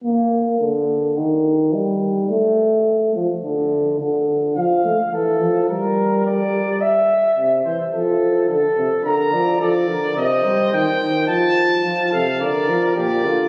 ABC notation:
X:1
M:4/4
L:1/8
Q:1/4=107
K:Bb
V:1 name="Trumpet"
z8 | z8 | z8 | z8 |
b2 d2 e2 g2 | a3 f d2 d2 |]
V:2 name="Flugelhorn"
z8 | z8 | f2 A2 B2 d2 | =e3 c A2 A2 |
B d A B c4- | c z F A B2 G F |]
V:3 name="Euphonium" clef=bass
B,2 D,2 E,2 G,2 | A,3 F, D,2 D,2 | F, A, =E, F, G,4- | G, z C, =E, F,2 D, C, |
D, F, F, D, C, G, E, E, | F,2 F, C, D, F, B,, D, |]